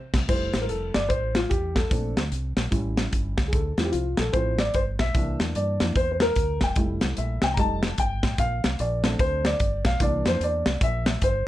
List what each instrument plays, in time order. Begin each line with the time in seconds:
0.14 fingered electric bass C2, kick, snare, crash
0.27 fingered electric bass F1, grand piano G3 A3 E4 C5, kick, crash
0.53 fingered electric bass A1, snare, closed hi-hat
0.61 grand piano A#4
0.69 fingered electric bass F1, grand piano A4, closed hi-hat
0.94 fingered electric bass G1, grand piano D5, snare, closed hi-hat
1.09 fingered electric bass A1, grand piano C5, kick, closed hi-hat
1.35 grand piano F4, snare, closed hi-hat
1.50 fingered electric bass E2, grand piano G4, kick, closed hi-hat
1.75 grand piano A4, kick, snare, closed hi-hat
1.90 fingered electric bass A#1, grand piano A3 C4 D4, kick, closed hi-hat
2.17 fingered electric bass D2, snare, closed hi-hat
2.32 fingered electric bass C2, closed hi-hat
2.57 fingered electric bass A#1, snare, closed hi-hat
2.71 fingered electric bass A1, grand piano G3 C#4 E4, kick, closed hi-hat
2.97 snare, closed hi-hat
3.13 fingered electric bass G1, kick, closed hi-hat
3.38 fingered electric bass C#2, kick, snare, closed hi-hat
3.48 grand piano G#4
3.53 fingered electric bass D2, grand piano A4, kick, closed hi-hat
3.78 fingered electric bass E2, grand piano F3 C4 E4, snare, closed hi-hat
3.85 grand piano G4
3.92 fingered electric bass C2, grand piano F4, closed hi-hat
4.17 fingered electric bass A#1, grand piano A4, snare, closed hi-hat
4.32 fingered electric bass A1, grand piano F3 C4 E4 C5, kick, closed hi-hat
4.58 grand piano D5, snare, closed hi-hat
4.74 fingered electric bass G1, grand piano C5, kick, closed hi-hat
4.99 fingered electric bass B1, grand piano E5, kick, snare, closed hi-hat
5.15 fingered electric bass C2, grand piano E3 A#3 D4, kick, closed hi-hat
5.40 fingered electric bass E2, snare, closed hi-hat
5.55 fingered electric bass G2, grand piano D5, closed hi-hat
5.80 fingered electric bass F2, grand piano E3 A#3 D4, snare, closed hi-hat
5.95 fingered electric bass E2, grand piano C5, kick, closed hi-hat
6.12 grand piano C5
6.20 grand piano A#4, snare, closed hi-hat
6.36 fingered electric bass D2, kick, closed hi-hat
6.61 fingered electric bass E1, grand piano G5, kick, snare, closed hi-hat
6.76 fingered electric bass F1, grand piano G3 A3 E4, kick, closed hi-hat
7.01 fingered electric bass C2, snare, closed hi-hat
7.17 fingered electric bass A#1, grand piano E5, closed hi-hat
7.42 fingered electric bass C2, grand piano G5, snare, closed hi-hat
7.54 fingered electric bass F1, grand piano G3 A#5, kick, closed hi-hat
7.59 grand piano A3 D#4 A5
7.83 snare, closed hi-hat
7.98 fingered electric bass G1, grand piano G5, kick, closed hi-hat
8.23 fingered electric bass A1, kick, snare, closed hi-hat
8.38 fingered electric bass A#1, grand piano F5, kick, closed hi-hat
8.64 fingered electric bass C2, snare, closed hi-hat
8.79 fingered electric bass A#1, grand piano D5, closed hi-hat
9.03 grand piano A3 C4 D4, snare, closed hi-hat
9.19 fingered electric bass D2, grand piano C5, kick, closed hi-hat
9.45 grand piano D5, snare, closed hi-hat
9.60 fingered electric bass G1, kick, closed hi-hat
9.85 fingered electric bass B1, grand piano F5, kick, snare, closed hi-hat
10.00 fingered electric bass C2, grand piano E3 A#3 D4 D5, kick, closed hi-hat
10.25 fingered electric bass F2, grand piano C5, snare, closed hi-hat
10.40 fingered electric bass E2, grand piano D5, closed hi-hat
10.66 fingered electric bass C2, snare, closed hi-hat
10.81 fingered electric bass A#1, grand piano E5, kick, closed hi-hat
11.06 snare, closed hi-hat
11.22 fingered electric bass G1, grand piano C5, kick, closed hi-hat